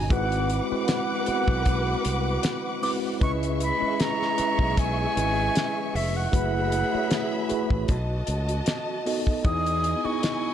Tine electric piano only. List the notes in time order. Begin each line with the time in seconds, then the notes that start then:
Already playing: A#2 C#4 D4 D#4 F#4 A#4 B4
0.10 G#3 C4 E4 F#4 B4
0.71 G#3 C4 E4 F#4 B4
1.27 G#3 B3 E4 F#4 B4
1.33 C4
2.82 G#3 C4 E4 F#4 B4
3.21 G#3 C#4 E4 B4 D#5
3.80 G#3 C#4 E4 B4 D#5
4.37 G#3 C#4 E4 B4 D#5
5.15 G#3 C#4 E4 B4 D#5
6.32 A3 E4 F#4 G#4 B4
6.92 A3 E4 F#4 G#4 C#5
7.49 A3 E4 F#4 G#4 B4
9.06 B3 D#4 F#4 A4 D#5
9.45 B3 D#4 E4 G#4 D#5
10.05 B3 D#4 E4 G#4 D#5